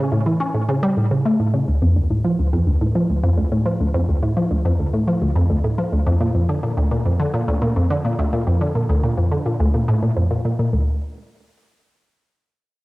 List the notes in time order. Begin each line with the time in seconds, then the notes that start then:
0.12 A2
0.26 E3
0.40 C#4
0.54 A2
0.69 C#3
0.83 G3
0.97 A2
1.11 C#3
1.25 A3
1.40 A2
1.54 C#3
1.68 D2
1.82 F2
1.96 D2
2.10 A2
2.24 F3
2.39 D2
2.53 F2
2.67 D2
2.81 A2
2.95 F3
3.09 D2
3.23 F2
3.37 D2
3.52 A2
3.66 F3
3.80 D2
3.94 F2
4.09 D2
4.23 A2
4.37 F3
4.51 D2
4.65 F2
4.79 D2
4.93 A2
5.07 F3
5.22 D2
5.36 F2
5.50 D2
5.64 A2
5.78 F3
5.92 D2
6.06 F2
6.21 A#2
6.35 F2
6.49 D3
6.63 A#2
6.77 D2
6.91 A#2
7.05 F2
7.20 D3
7.34 A#2
7.48 D2
7.62 A#2
7.76 F2
7.90 D3
8.05 A#2
8.19 D2
8.33 A#2
8.47 F2
8.61 D3
8.75 A#2
8.89 D2
9.03 A#2
9.17 F2
9.32 D3
9.46 A#2
9.60 D2
9.74 A#2
9.88 A2
10.02 A#2
10.17 F2
10.31 A#2
10.45 A#2
10.59 A#2
10.73 D2